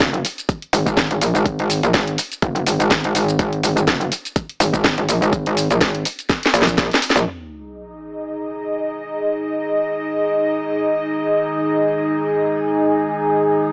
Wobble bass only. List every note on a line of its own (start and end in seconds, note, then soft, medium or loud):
0.00 0.23 F#1 loud
0.73 0.84 G#1 loud
0.87 1.09 G#1 loud
1.11 1.20 G#1 medium
1.21 1.33 A#1 loud
1.35 1.81 G#1 medium
1.83 1.92 A#1 medium
1.94 2.17 G#1 loud
2.42 2.65 F#1 medium
2.67 2.78 G#1 medium
2.80 3.13 G#1 medium
3.15 3.38 G#1 medium
3.39 3.62 G#1 medium
3.64 3.86 G#1 medium
3.88 4.10 F#1 loud
4.60 4.72 G#1 loud
4.74 4.96 G#1 medium
4.98 5.07 G#1 medium
5.09 5.20 A#1 loud
5.22 5.68 G#1 medium
5.71 5.79 A#1 loud
5.81 6.04 G#1 loud
6.54 6.89 A#1 loud
7.16 7.25 A#1 loud